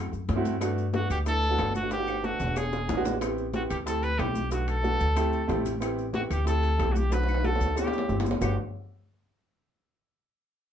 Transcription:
Already playing: F#2
0.12 F#2, high bongo, high conga, maracas
0.28 G2, high bongo, low bongo, high conga, high timbale, low timbale, maracas
0.36 A3 C4 E4 F#4
0.45 high bongo, high conga, high timbale, maracas
0.61 A3 B3 D4 F#4, high bongo, high conga, high timbale, claves, maracas
0.78 high bongo, high conga, maracas
0.93 A3 B3 D4 F#4, high bongo, high conga, high timbale, low timbale, maracas
1.10 D2 G4, high bongo, high conga, high timbale, claves, maracas
1.25 A3 B3 D4 E4 A4, high bongo, high conga, maracas
1.43 high bongo, high conga, high timbale, maracas
1.49 A3 B3 D4 F#4
1.58 G1, high bongo, low bongo, high conga, high timbale, low timbale, claves, maracas
1.75 F#4, high conga, maracas
1.82 A3 B3 D4 F#4
1.91 G4, high bongo, high conga, high timbale, maracas
1.97 A3 B3 D4 F#4
2.07 high conga, high timbale, claves, maracas
2.23 A3 B3 D4 F#4 A4, high bongo, high conga, maracas
2.40 E1, high bongo, high conga, low timbale, maracas
2.56 G#4, high bongo, high conga, low timbale, claves, maracas
2.73 high bongo, high conga, low timbale, maracas
2.89 A1, low bongo, high conga, low timbale, maracas
2.96 G#3 B3 D4 F#4
3.05 low bongo, high conga, low timbale, maracas
3.20 B3 C4 E4 G4, high bongo, high conga, high timbale, claves, maracas
3.38 high bongo, high conga, maracas
3.53 B3 C4 E4 F#4 G4, high bongo, high conga, high timbale, low timbale, maracas
3.70 D2 G4, high bongo, high conga, high timbale, claves, maracas
3.86 A3 C4 E4 G4 A4, high bongo, high conga, maracas
4.03 B4, high bongo, high conga, high timbale, maracas
4.18 B1 A3 C4 E4 G4, high bongo, low bongo, high conga, high timbale, low timbale, claves, maracas
4.35 high conga, maracas
4.50 A3 B3 D4 F#4, high bongo, high conga, high timbale, maracas
4.68 A4, high conga, high timbale, claves, maracas
4.83 A3 B3 D4 F#4, high bongo, high conga, low timbale, maracas
5.00 D2, high bongo, high conga, high timbale, maracas
5.16 A3 C4 E4 G4, high bongo, high conga, high timbale, claves, maracas
5.33 high bongo, high conga, maracas
5.48 A1 A3 C4 E4 G4, high bongo, low bongo, high conga, high timbale, low timbale, maracas
5.65 high bongo, high conga, high timbale, maracas
5.80 B3 C4 E4 G4, high bongo, high conga, high timbale, claves, maracas
5.98 high bongo, high conga, maracas
6.13 B3 C4 E4 F#4 G4, high bongo, high conga, high timbale, low timbale, maracas
6.30 D2 G4, high bongo, high conga, high timbale, claves, maracas
6.45 A3 C4 E4 G4 A4, high bongo, high conga, maracas
6.63 high bongo, high conga, high timbale, maracas
6.78 B1 A3 C4 E4 G4, high bongo, low bongo, high conga, high timbale, low timbale, claves, maracas
6.92 F#4, high conga, maracas
6.97 G4
7.10 A3 B3 D4 F#4 B4, high bongo, high conga, high timbale, maracas
7.23 high timbale
7.28 high conga, claves, maracas
7.34 high timbale
7.43 A3 B3 D4 F#4 A4, high bongo, high conga, maracas
7.55 low timbale
7.60 D2, high bongo, maracas
7.66 high timbale
7.75 A3 C4 E4 G4, high bongo, high conga, low timbale, claves, maracas
7.87 high bongo, low timbale
7.92 high conga, maracas
7.98 low bongo, low timbale
8.09 G1 A3 C4 E4 G4, high conga, maracas
8.20 low bongo, low timbale
8.25 high conga, maracas
8.31 low bongo, low timbale
8.41 G1 A3 B3 D4 F#4 G4, low bongo, low conga, low timbale, claves, maracas

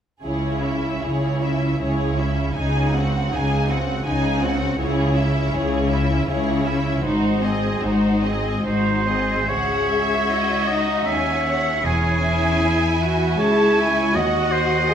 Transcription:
0.23 C#2 C#3 E4 G#4 C#5
0.62 C#4 E4 E5
1.02 C#2 C#3 E4 G#4 C#5
1.42 C#4 E4 E5
1.80 C#2 C#3 E4 G#4 C#5
2.18 C#4 E4 E5
2.56 C#2 C#3 D#4 G#4 G#5
2.94 C4 F#4 F#5
3.32 C#2 C#3 D#4 G#4 G#5
3.68 C4 F#4 F#5
4.04 C#2 C#3 D#4 G#4 G#5
4.41 C4 F#4 F#5
4.77 C#2 C#3 E4 G#4 C#5
5.15 C#4 E4 E5
5.53 C#2 C#3 E4 G#4 C#5
5.90 C#4 E4 E5
6.28 C#2 C#3 E4 G#4 C#5
6.65 C#4 E4 E5
7.03 G#1 G#2 D#4 F#4 C5
7.42 C4 G#4 D#5
7.82 G#1 G#2 D#4 F#4 C5
8.22 C4 G#4 D#5
8.64 G#1 G#2 D#4 F#4 C5
9.06 C4 G#4 D#5
9.48 C#2 F#4 G#4 C#5 E5 F#5
9.89 E5
10.29 E4 D#5
10.68 D#4 D#5
11.06 D#2 C#4 C#5 E5 G#5
11.45 F#5
11.84 E1 E2 C#4 E4 G#4 C#5 G#5
12.25 E5
12.63 E4
13.01 F#4
13.39 C#2 E4 G#4 C#5 E5 A5
13.78 E4 G#5
14.15 D#2 F#4 D#5 F#5
14.52 C5
14.88 G#4 D#5

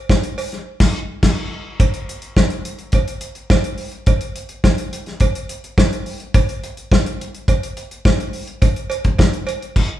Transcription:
0.09 kick, snare, cowbell
0.23 closed hi-hat
0.38 open hi-hat, cowbell
0.52 snare, closed hi-hat
0.80 kick, snare, crash
1.23 kick, snare, crash
1.80 kick, closed hi-hat, cowbell
1.94 closed hi-hat
2.09 closed hi-hat
2.22 closed hi-hat
2.37 kick, snare, cowbell
2.50 closed hi-hat
2.65 closed hi-hat
2.79 closed hi-hat
2.92 kick, closed hi-hat, cowbell
3.08 closed hi-hat
3.21 closed hi-hat
3.35 closed hi-hat
3.50 kick, snare, cowbell
3.64 closed hi-hat
3.78 open hi-hat
3.92 closed hi-hat
4.06 kick, closed hi-hat, cowbell
4.21 closed hi-hat
4.36 closed hi-hat
4.49 closed hi-hat
4.64 kick, snare, cowbell
4.78 closed hi-hat
4.93 closed hi-hat
5.06 snare, closed hi-hat
5.20 kick, closed hi-hat, cowbell
5.35 closed hi-hat
5.49 closed hi-hat
5.64 closed hi-hat
5.78 kick, snare, cowbell
5.93 closed hi-hat
6.06 open hi-hat
6.20 closed hi-hat
6.34 kick, closed hi-hat, cowbell
6.49 closed hi-hat
6.64 closed hi-hat
6.77 closed hi-hat
6.92 kick, snare, cowbell
7.06 closed hi-hat
7.21 closed hi-hat
7.35 closed hi-hat
7.48 kick, closed hi-hat, cowbell
7.63 closed hi-hat
7.77 closed hi-hat
7.91 closed hi-hat
8.05 kick, snare, cowbell
8.20 closed hi-hat
8.33 open hi-hat
8.47 closed hi-hat
8.62 kick, closed hi-hat, cowbell
8.76 closed hi-hat
8.90 closed hi-hat, cowbell
9.04 kick, closed hi-hat
9.19 kick, snare, cowbell
9.33 closed hi-hat
9.47 closed hi-hat, cowbell
9.62 closed hi-hat
9.76 kick, crash

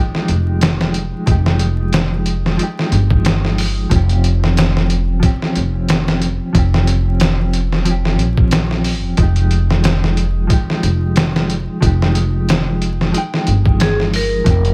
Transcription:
Already playing: F3 G#3 D#4
0.00 G4
0.15 snare
0.28 F1, closed hi-hat
0.61 snare, closed hi-hat
0.81 snare
0.94 closed hi-hat
1.26 F1 F3 G#3 D#4, kick, closed hi-hat
1.32 G4
1.46 snare
1.59 closed hi-hat
1.93 snare, closed hi-hat
2.26 closed hi-hat
2.46 snare
2.57 F3 G#3 D#4, closed hi-hat
2.63 G4
2.79 snare
2.92 G1, closed hi-hat
3.10 kick
3.25 snare, closed hi-hat
3.45 snare
3.58 open hi-hat
3.90 F1 F3 C4 C#4, kick, closed hi-hat
3.96 G4
4.09 closed hi-hat
4.24 closed hi-hat
4.44 snare
4.57 snare, closed hi-hat
4.77 snare
4.90 closed hi-hat
5.20 F3 C4, kick, closed hi-hat
5.24 C#4 G4
5.42 snare
5.56 F1, closed hi-hat
5.89 snare, closed hi-hat
6.08 snare
6.22 closed hi-hat
6.53 F1 F3 C4, kick, closed hi-hat
6.57 C#4 G4
6.74 snare
6.87 closed hi-hat
7.20 snare, closed hi-hat
7.53 closed hi-hat
7.72 snare
7.85 F3 C4 C#4, closed hi-hat
7.91 G4
8.05 snare
8.19 A#1, closed hi-hat
8.37 kick
8.51 snare, closed hi-hat
8.71 snare
8.84 open hi-hat
9.04 F1
9.17 F1 F3 G#3 D#4, kick, closed hi-hat
9.23 G4
9.36 closed hi-hat
9.51 closed hi-hat
9.70 snare
9.84 snare, closed hi-hat
10.04 snare
10.17 closed hi-hat
10.47 F3 G#3 D#4, kick, closed hi-hat
10.53 G4
10.70 snare
10.83 F1, closed hi-hat
11.16 snare, closed hi-hat
11.36 snare
11.50 closed hi-hat
11.81 F1 F3 G#3 D#4, kick, closed hi-hat
11.86 G4
12.02 snare
12.15 closed hi-hat
12.49 snare, closed hi-hat
12.82 closed hi-hat
13.01 snare
13.12 F3 G#3 D#4, closed hi-hat
13.18 G5
13.34 snare
13.47 G1, closed hi-hat
13.65 kick
13.80 G#4, snare, closed hi-hat
14.00 snare
14.14 A#4, open hi-hat
14.44 F1 F3 C4, kick, closed hi-hat
14.48 C#4 G4
14.65 closed hi-hat

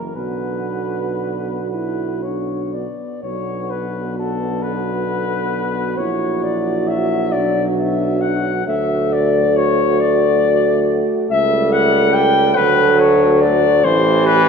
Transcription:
Already playing: F#1 E3 C#4 A#4
0.15 B1 D3 B3 F#4 B4
1.71 E4 B4
2.23 D4 C#5
2.73 B3 D5
3.23 B1 D3 B3 F#4 C#5
3.70 B4
4.18 A4
4.62 B4
5.97 A#1 F#3 E4 C#5
6.43 D5
6.88 E5
7.32 B1 D4 D5
7.79 E5
8.21 F#5
8.66 D2 A3 F#4 E5
9.13 D5
9.57 C#5
10.00 D5
11.30 C#2 G3 A4 E5
11.72 F#5
12.14 G5
12.56 D2 F#3 B4
13.00 C#5
13.42 D5
13.84 A1 E3 A3 G4 C5
14.27 B4

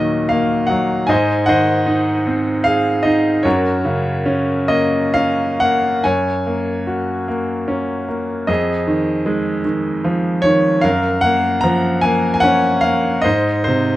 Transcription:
Already playing: D#2 A#2 D#3 F#3 A#4 D#5 F#5
0.29 A#3 F5
0.67 F#3 F#5
1.07 G#2 C5 D#5 G#5
1.46 D#3 C5 D#5 F#5
1.86 D#4
2.27 C4
2.64 G#4 F5
3.03 D#4 D#5
3.43 F#2 F#4 A#4 C#5
3.85 C#3
4.26 C#4
4.68 A#3 D#5
5.14 C#4 F5
5.60 A#3 F#5
6.04 F#2 C#5 G#5
6.47 A#3
6.87 F#4
7.28 A#3
7.68 C#4
8.08 A#3
8.47 F2 G#4 D#5
8.87 D#3
9.26 G#3
9.65 D#3
10.04 F3
10.42 D#3 C#5
10.81 F#2 A#4 F5
11.21 A#3 F#5
11.61 F3 A#5
12.01 A#3 G#5
12.34 G#5
12.40 C#4 F#5
12.81 A#3 F5
13.22 G#2 C5 D#5
13.64 C3 C5

